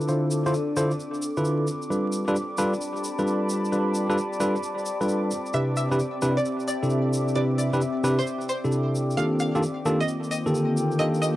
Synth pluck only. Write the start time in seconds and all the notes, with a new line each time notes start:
5.54 E5
5.77 E5
6.37 D5
6.68 D5
7.36 D5
7.58 D5
8.19 C5
8.49 C5
9.17 F5
9.40 F5
10.01 D#5
10.31 D#5
10.99 D#5
11.22 D#5